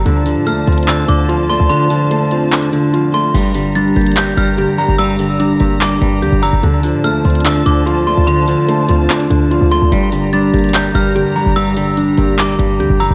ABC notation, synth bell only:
X:1
M:4/4
L:1/8
Q:1/4=146
K:Gm
V:1 name="Synth bell"
z2 f'2 =e' d' z2 | c'6 z2 | z2 a'2 g' f' z2 | =e'4 d'3 e' |
z2 f'2 =e' d' z2 | c'6 z2 | z2 a'2 g' f' z2 | =e'4 d'3 e' |]